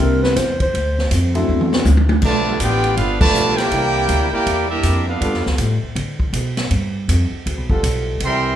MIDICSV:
0, 0, Header, 1, 9, 480
1, 0, Start_track
1, 0, Key_signature, 1, "major"
1, 0, Tempo, 373367
1, 946, Time_signature, 4, 2, 24, 8
1, 11001, End_track
2, 0, Start_track
2, 0, Title_t, "Clarinet"
2, 0, Program_c, 0, 71
2, 0, Note_on_c, 0, 70, 88
2, 279, Note_off_c, 0, 70, 0
2, 287, Note_on_c, 0, 71, 100
2, 462, Note_on_c, 0, 72, 93
2, 482, Note_off_c, 0, 71, 0
2, 767, Note_off_c, 0, 72, 0
2, 797, Note_on_c, 0, 72, 93
2, 1395, Note_off_c, 0, 72, 0
2, 11001, End_track
3, 0, Start_track
3, 0, Title_t, "Trumpet section"
3, 0, Program_c, 1, 61
3, 2887, Note_on_c, 1, 74, 90
3, 2896, Note_on_c, 1, 81, 121
3, 2902, Note_on_c, 1, 71, 88
3, 2904, Note_on_c, 1, 65, 99
3, 3324, Note_off_c, 1, 74, 0
3, 3329, Note_off_c, 1, 81, 0
3, 3332, Note_off_c, 1, 71, 0
3, 3333, Note_off_c, 1, 65, 0
3, 3362, Note_on_c, 1, 71, 98
3, 3362, Note_on_c, 1, 74, 96
3, 3366, Note_on_c, 1, 65, 96
3, 3374, Note_on_c, 1, 79, 105
3, 3810, Note_off_c, 1, 71, 0
3, 3821, Note_on_c, 1, 69, 77
3, 3822, Note_on_c, 1, 77, 98
3, 3826, Note_on_c, 1, 71, 82
3, 3832, Note_on_c, 1, 62, 78
3, 3835, Note_off_c, 1, 74, 0
3, 3836, Note_off_c, 1, 65, 0
3, 3840, Note_off_c, 1, 79, 0
3, 4106, Note_off_c, 1, 69, 0
3, 4106, Note_off_c, 1, 77, 0
3, 4108, Note_off_c, 1, 71, 0
3, 4112, Note_off_c, 1, 62, 0
3, 4114, Note_on_c, 1, 74, 101
3, 4118, Note_on_c, 1, 81, 112
3, 4120, Note_on_c, 1, 65, 98
3, 4123, Note_on_c, 1, 71, 97
3, 4568, Note_off_c, 1, 74, 0
3, 4570, Note_off_c, 1, 81, 0
3, 4571, Note_off_c, 1, 65, 0
3, 4572, Note_off_c, 1, 71, 0
3, 4587, Note_on_c, 1, 74, 91
3, 4595, Note_on_c, 1, 79, 115
3, 4596, Note_on_c, 1, 70, 95
3, 4598, Note_on_c, 1, 64, 100
3, 5536, Note_off_c, 1, 74, 0
3, 5543, Note_off_c, 1, 64, 0
3, 5546, Note_off_c, 1, 70, 0
3, 5551, Note_off_c, 1, 79, 0
3, 5551, Note_on_c, 1, 74, 95
3, 5559, Note_on_c, 1, 64, 91
3, 5562, Note_on_c, 1, 70, 92
3, 5567, Note_on_c, 1, 79, 105
3, 6006, Note_off_c, 1, 74, 0
3, 6010, Note_off_c, 1, 64, 0
3, 6012, Note_off_c, 1, 70, 0
3, 6015, Note_off_c, 1, 79, 0
3, 6036, Note_on_c, 1, 70, 75
3, 6038, Note_on_c, 1, 62, 82
3, 6041, Note_on_c, 1, 67, 87
3, 6041, Note_on_c, 1, 76, 98
3, 6489, Note_off_c, 1, 70, 0
3, 6490, Note_off_c, 1, 62, 0
3, 6492, Note_off_c, 1, 67, 0
3, 6492, Note_off_c, 1, 76, 0
3, 6532, Note_on_c, 1, 62, 82
3, 6538, Note_on_c, 1, 69, 73
3, 6538, Note_on_c, 1, 71, 79
3, 6544, Note_on_c, 1, 77, 84
3, 7011, Note_off_c, 1, 62, 0
3, 7014, Note_off_c, 1, 69, 0
3, 7014, Note_off_c, 1, 71, 0
3, 7017, Note_off_c, 1, 77, 0
3, 10594, Note_on_c, 1, 79, 87
3, 10595, Note_on_c, 1, 76, 91
3, 10597, Note_on_c, 1, 70, 95
3, 10597, Note_on_c, 1, 84, 110
3, 11001, Note_off_c, 1, 70, 0
3, 11001, Note_off_c, 1, 76, 0
3, 11001, Note_off_c, 1, 79, 0
3, 11001, Note_off_c, 1, 84, 0
3, 11001, End_track
4, 0, Start_track
4, 0, Title_t, "Trombone section"
4, 0, Program_c, 2, 61
4, 3170, Note_on_c, 2, 59, 86
4, 3172, Note_on_c, 2, 55, 89
4, 3177, Note_on_c, 2, 69, 97
4, 3179, Note_on_c, 2, 65, 81
4, 3289, Note_off_c, 2, 59, 0
4, 3291, Note_off_c, 2, 55, 0
4, 3294, Note_off_c, 2, 69, 0
4, 3295, Note_off_c, 2, 65, 0
4, 4298, Note_on_c, 2, 59, 90
4, 4303, Note_on_c, 2, 55, 103
4, 4310, Note_on_c, 2, 65, 90
4, 4312, Note_on_c, 2, 69, 104
4, 4782, Note_off_c, 2, 59, 0
4, 4785, Note_off_c, 2, 55, 0
4, 4789, Note_off_c, 2, 65, 0
4, 4789, Note_off_c, 2, 69, 0
4, 4789, Note_on_c, 2, 62, 81
4, 4797, Note_on_c, 2, 52, 94
4, 4798, Note_on_c, 2, 60, 75
4, 4801, Note_on_c, 2, 70, 104
4, 5510, Note_off_c, 2, 62, 0
4, 5515, Note_off_c, 2, 52, 0
4, 5515, Note_off_c, 2, 60, 0
4, 5517, Note_off_c, 2, 70, 0
4, 6686, Note_on_c, 2, 55, 95
4, 6690, Note_on_c, 2, 65, 88
4, 6691, Note_on_c, 2, 69, 109
4, 6700, Note_on_c, 2, 59, 84
4, 7419, Note_off_c, 2, 55, 0
4, 7421, Note_off_c, 2, 65, 0
4, 7421, Note_off_c, 2, 69, 0
4, 7425, Note_off_c, 2, 59, 0
4, 9894, Note_on_c, 2, 55, 101
4, 9896, Note_on_c, 2, 69, 118
4, 9898, Note_on_c, 2, 59, 92
4, 9899, Note_on_c, 2, 65, 87
4, 10513, Note_off_c, 2, 55, 0
4, 10514, Note_off_c, 2, 69, 0
4, 10516, Note_off_c, 2, 59, 0
4, 10516, Note_off_c, 2, 65, 0
4, 11001, End_track
5, 0, Start_track
5, 0, Title_t, "Grand piano"
5, 0, Program_c, 3, 0
5, 0, Note_on_c, 3, 55, 72
5, 0, Note_on_c, 3, 58, 66
5, 0, Note_on_c, 3, 60, 65
5, 0, Note_on_c, 3, 62, 67
5, 0, Note_on_c, 3, 64, 75
5, 434, Note_off_c, 3, 55, 0
5, 436, Note_off_c, 3, 58, 0
5, 442, Note_off_c, 3, 60, 0
5, 444, Note_off_c, 3, 62, 0
5, 444, Note_off_c, 3, 64, 0
5, 1722, Note_on_c, 3, 54, 69
5, 1733, Note_on_c, 3, 60, 66
5, 1734, Note_on_c, 3, 57, 66
5, 1740, Note_on_c, 3, 62, 65
5, 1742, Note_on_c, 3, 64, 80
5, 2348, Note_off_c, 3, 54, 0
5, 2353, Note_off_c, 3, 57, 0
5, 2353, Note_off_c, 3, 60, 0
5, 2357, Note_off_c, 3, 62, 0
5, 2358, Note_off_c, 3, 64, 0
5, 11001, End_track
6, 0, Start_track
6, 0, Title_t, "Trombone section"
6, 0, Program_c, 4, 61
6, 2869, Note_on_c, 4, 57, 94
6, 2871, Note_on_c, 4, 50, 95
6, 2873, Note_on_c, 4, 53, 89
6, 3315, Note_off_c, 4, 50, 0
6, 3315, Note_off_c, 4, 57, 0
6, 3317, Note_off_c, 4, 53, 0
6, 3355, Note_on_c, 4, 62, 87
6, 3356, Note_on_c, 4, 67, 89
6, 3362, Note_on_c, 4, 59, 91
6, 3807, Note_off_c, 4, 59, 0
6, 3818, Note_off_c, 4, 62, 0
6, 3822, Note_on_c, 4, 59, 85
6, 3826, Note_on_c, 4, 65, 88
6, 3832, Note_off_c, 4, 67, 0
6, 3834, Note_on_c, 4, 62, 86
6, 4105, Note_on_c, 4, 57, 96
6, 4106, Note_off_c, 4, 59, 0
6, 4106, Note_on_c, 4, 53, 96
6, 4108, Note_off_c, 4, 65, 0
6, 4108, Note_on_c, 4, 50, 95
6, 4112, Note_off_c, 4, 62, 0
6, 4563, Note_off_c, 4, 57, 0
6, 4564, Note_off_c, 4, 53, 0
6, 4565, Note_off_c, 4, 50, 0
6, 4574, Note_on_c, 4, 64, 92
6, 4577, Note_on_c, 4, 67, 86
6, 4582, Note_on_c, 4, 58, 94
6, 5513, Note_off_c, 4, 58, 0
6, 5523, Note_off_c, 4, 67, 0
6, 5527, Note_off_c, 4, 64, 0
6, 5528, Note_on_c, 4, 58, 95
6, 5539, Note_on_c, 4, 67, 88
6, 5542, Note_on_c, 4, 64, 93
6, 5994, Note_off_c, 4, 58, 0
6, 6000, Note_off_c, 4, 67, 0
6, 6002, Note_off_c, 4, 64, 0
6, 6021, Note_on_c, 4, 58, 80
6, 6022, Note_on_c, 4, 55, 71
6, 6024, Note_on_c, 4, 64, 80
6, 6481, Note_off_c, 4, 55, 0
6, 6481, Note_off_c, 4, 58, 0
6, 6482, Note_off_c, 4, 64, 0
6, 6507, Note_on_c, 4, 62, 72
6, 6509, Note_on_c, 4, 59, 79
6, 6512, Note_on_c, 4, 65, 70
6, 6998, Note_off_c, 4, 62, 0
6, 6999, Note_off_c, 4, 59, 0
6, 7001, Note_off_c, 4, 65, 0
6, 10582, Note_on_c, 4, 60, 93
6, 10585, Note_on_c, 4, 55, 92
6, 10590, Note_on_c, 4, 52, 90
6, 11001, Note_off_c, 4, 52, 0
6, 11001, Note_off_c, 4, 55, 0
6, 11001, Note_off_c, 4, 60, 0
6, 11001, End_track
7, 0, Start_track
7, 0, Title_t, "Upright bass"
7, 0, Program_c, 5, 32
7, 0, Note_on_c, 5, 36, 96
7, 451, Note_off_c, 5, 36, 0
7, 464, Note_on_c, 5, 40, 97
7, 931, Note_off_c, 5, 40, 0
7, 950, Note_on_c, 5, 38, 92
7, 1414, Note_off_c, 5, 38, 0
7, 1428, Note_on_c, 5, 41, 107
7, 1893, Note_off_c, 5, 41, 0
7, 1911, Note_on_c, 5, 40, 94
7, 2375, Note_off_c, 5, 40, 0
7, 2380, Note_on_c, 5, 38, 95
7, 2849, Note_off_c, 5, 38, 0
7, 2857, Note_on_c, 5, 35, 83
7, 3328, Note_off_c, 5, 35, 0
7, 3340, Note_on_c, 5, 33, 99
7, 3809, Note_off_c, 5, 33, 0
7, 3817, Note_on_c, 5, 31, 95
7, 4287, Note_off_c, 5, 31, 0
7, 4296, Note_on_c, 5, 35, 86
7, 4767, Note_off_c, 5, 35, 0
7, 4776, Note_on_c, 5, 36, 88
7, 5247, Note_off_c, 5, 36, 0
7, 5253, Note_on_c, 5, 38, 107
7, 5541, Note_off_c, 5, 38, 0
7, 5740, Note_on_c, 5, 40, 92
7, 6206, Note_off_c, 5, 40, 0
7, 6213, Note_on_c, 5, 41, 88
7, 6685, Note_off_c, 5, 41, 0
7, 6700, Note_on_c, 5, 43, 86
7, 6870, Note_off_c, 5, 43, 0
7, 6870, Note_on_c, 5, 41, 56
7, 7020, Note_off_c, 5, 41, 0
7, 7027, Note_on_c, 5, 38, 67
7, 7170, Note_off_c, 5, 38, 0
7, 7178, Note_on_c, 5, 45, 96
7, 7464, Note_off_c, 5, 45, 0
7, 7655, Note_on_c, 5, 50, 103
7, 8126, Note_off_c, 5, 50, 0
7, 8134, Note_on_c, 5, 47, 99
7, 8606, Note_off_c, 5, 47, 0
7, 8624, Note_on_c, 5, 43, 92
7, 9091, Note_off_c, 5, 43, 0
7, 9107, Note_on_c, 5, 41, 96
7, 9389, Note_off_c, 5, 41, 0
7, 9593, Note_on_c, 5, 38, 97
7, 9731, Note_off_c, 5, 38, 0
7, 9731, Note_on_c, 5, 35, 58
7, 9887, Note_off_c, 5, 35, 0
7, 9894, Note_on_c, 5, 31, 69
7, 10049, Note_off_c, 5, 31, 0
7, 10070, Note_on_c, 5, 35, 95
7, 10534, Note_off_c, 5, 35, 0
7, 10546, Note_on_c, 5, 36, 84
7, 11001, Note_off_c, 5, 36, 0
7, 11001, End_track
8, 0, Start_track
8, 0, Title_t, "Muted upright bass strokes"
8, 5563, Note_on_c, 9, 29, 46
8, 5692, Note_off_c, 9, 29, 0
8, 7497, Note_on_c, 9, 29, 41
8, 7625, Note_off_c, 9, 29, 0
8, 9405, Note_on_c, 9, 29, 39
8, 9534, Note_off_c, 9, 29, 0
8, 11001, End_track
9, 0, Start_track
9, 0, Title_t, "Drums"
9, 303, Note_on_c, 9, 38, 56
9, 432, Note_off_c, 9, 38, 0
9, 468, Note_on_c, 9, 38, 43
9, 468, Note_on_c, 9, 44, 79
9, 468, Note_on_c, 9, 51, 88
9, 473, Note_on_c, 9, 36, 22
9, 596, Note_off_c, 9, 38, 0
9, 596, Note_off_c, 9, 44, 0
9, 596, Note_off_c, 9, 51, 0
9, 601, Note_off_c, 9, 36, 0
9, 772, Note_on_c, 9, 51, 54
9, 775, Note_on_c, 9, 36, 59
9, 900, Note_off_c, 9, 51, 0
9, 903, Note_off_c, 9, 36, 0
9, 956, Note_on_c, 9, 36, 22
9, 959, Note_on_c, 9, 51, 66
9, 1084, Note_off_c, 9, 36, 0
9, 1087, Note_off_c, 9, 51, 0
9, 1266, Note_on_c, 9, 38, 44
9, 1395, Note_off_c, 9, 38, 0
9, 1426, Note_on_c, 9, 44, 58
9, 1426, Note_on_c, 9, 51, 85
9, 1431, Note_on_c, 9, 36, 22
9, 1555, Note_off_c, 9, 44, 0
9, 1555, Note_off_c, 9, 51, 0
9, 1560, Note_off_c, 9, 36, 0
9, 1735, Note_on_c, 9, 51, 51
9, 1864, Note_off_c, 9, 51, 0
9, 2066, Note_on_c, 9, 47, 67
9, 2195, Note_off_c, 9, 47, 0
9, 2219, Note_on_c, 9, 38, 87
9, 2348, Note_off_c, 9, 38, 0
9, 2379, Note_on_c, 9, 44, 70
9, 2379, Note_on_c, 9, 48, 81
9, 2508, Note_off_c, 9, 44, 0
9, 2508, Note_off_c, 9, 48, 0
9, 2534, Note_on_c, 9, 48, 86
9, 2662, Note_off_c, 9, 48, 0
9, 2687, Note_on_c, 9, 48, 105
9, 2815, Note_off_c, 9, 48, 0
9, 2850, Note_on_c, 9, 49, 84
9, 2863, Note_on_c, 9, 36, 82
9, 2979, Note_off_c, 9, 49, 0
9, 2991, Note_off_c, 9, 36, 0
9, 3341, Note_on_c, 9, 44, 69
9, 3341, Note_on_c, 9, 51, 82
9, 3343, Note_on_c, 9, 36, 26
9, 3469, Note_off_c, 9, 44, 0
9, 3469, Note_off_c, 9, 51, 0
9, 3471, Note_off_c, 9, 36, 0
9, 3646, Note_on_c, 9, 51, 53
9, 3775, Note_off_c, 9, 51, 0
9, 3823, Note_on_c, 9, 36, 27
9, 3823, Note_on_c, 9, 51, 66
9, 3951, Note_off_c, 9, 36, 0
9, 3951, Note_off_c, 9, 51, 0
9, 4125, Note_on_c, 9, 36, 105
9, 4126, Note_on_c, 9, 49, 90
9, 4253, Note_off_c, 9, 36, 0
9, 4255, Note_off_c, 9, 49, 0
9, 4297, Note_on_c, 9, 44, 75
9, 4426, Note_off_c, 9, 44, 0
9, 4604, Note_on_c, 9, 38, 50
9, 4604, Note_on_c, 9, 51, 57
9, 4733, Note_off_c, 9, 38, 0
9, 4733, Note_off_c, 9, 51, 0
9, 4775, Note_on_c, 9, 51, 70
9, 4779, Note_on_c, 9, 36, 25
9, 4904, Note_off_c, 9, 51, 0
9, 4907, Note_off_c, 9, 36, 0
9, 5253, Note_on_c, 9, 44, 60
9, 5253, Note_on_c, 9, 51, 79
9, 5256, Note_on_c, 9, 36, 21
9, 5382, Note_off_c, 9, 44, 0
9, 5382, Note_off_c, 9, 51, 0
9, 5385, Note_off_c, 9, 36, 0
9, 5740, Note_on_c, 9, 36, 20
9, 5741, Note_on_c, 9, 51, 74
9, 5868, Note_off_c, 9, 36, 0
9, 5869, Note_off_c, 9, 51, 0
9, 6213, Note_on_c, 9, 44, 60
9, 6213, Note_on_c, 9, 51, 76
9, 6217, Note_on_c, 9, 36, 28
9, 6341, Note_off_c, 9, 44, 0
9, 6341, Note_off_c, 9, 51, 0
9, 6345, Note_off_c, 9, 36, 0
9, 6701, Note_on_c, 9, 36, 27
9, 6705, Note_on_c, 9, 51, 70
9, 6830, Note_off_c, 9, 36, 0
9, 6833, Note_off_c, 9, 51, 0
9, 6863, Note_on_c, 9, 38, 31
9, 6991, Note_off_c, 9, 38, 0
9, 7021, Note_on_c, 9, 38, 53
9, 7149, Note_off_c, 9, 38, 0
9, 7175, Note_on_c, 9, 44, 64
9, 7175, Note_on_c, 9, 51, 82
9, 7181, Note_on_c, 9, 36, 27
9, 7303, Note_off_c, 9, 44, 0
9, 7303, Note_off_c, 9, 51, 0
9, 7310, Note_off_c, 9, 36, 0
9, 7662, Note_on_c, 9, 36, 26
9, 7664, Note_on_c, 9, 51, 68
9, 7791, Note_off_c, 9, 36, 0
9, 7793, Note_off_c, 9, 51, 0
9, 7966, Note_on_c, 9, 36, 64
9, 8094, Note_off_c, 9, 36, 0
9, 8142, Note_on_c, 9, 36, 21
9, 8143, Note_on_c, 9, 44, 60
9, 8143, Note_on_c, 9, 51, 78
9, 8270, Note_off_c, 9, 36, 0
9, 8272, Note_off_c, 9, 44, 0
9, 8272, Note_off_c, 9, 51, 0
9, 8448, Note_on_c, 9, 38, 64
9, 8448, Note_on_c, 9, 51, 58
9, 8576, Note_off_c, 9, 38, 0
9, 8576, Note_off_c, 9, 51, 0
9, 8622, Note_on_c, 9, 51, 73
9, 8625, Note_on_c, 9, 36, 23
9, 8750, Note_off_c, 9, 51, 0
9, 8754, Note_off_c, 9, 36, 0
9, 9109, Note_on_c, 9, 36, 23
9, 9113, Note_on_c, 9, 44, 69
9, 9113, Note_on_c, 9, 51, 82
9, 9238, Note_off_c, 9, 36, 0
9, 9241, Note_off_c, 9, 44, 0
9, 9241, Note_off_c, 9, 51, 0
9, 9592, Note_on_c, 9, 36, 22
9, 9597, Note_on_c, 9, 51, 70
9, 9720, Note_off_c, 9, 36, 0
9, 9726, Note_off_c, 9, 51, 0
9, 9894, Note_on_c, 9, 36, 66
9, 10022, Note_off_c, 9, 36, 0
9, 10070, Note_on_c, 9, 36, 30
9, 10073, Note_on_c, 9, 44, 60
9, 10073, Note_on_c, 9, 51, 86
9, 10199, Note_off_c, 9, 36, 0
9, 10202, Note_off_c, 9, 44, 0
9, 10202, Note_off_c, 9, 51, 0
9, 10545, Note_on_c, 9, 51, 75
9, 10550, Note_on_c, 9, 36, 22
9, 10674, Note_off_c, 9, 51, 0
9, 10679, Note_off_c, 9, 36, 0
9, 11001, End_track
0, 0, End_of_file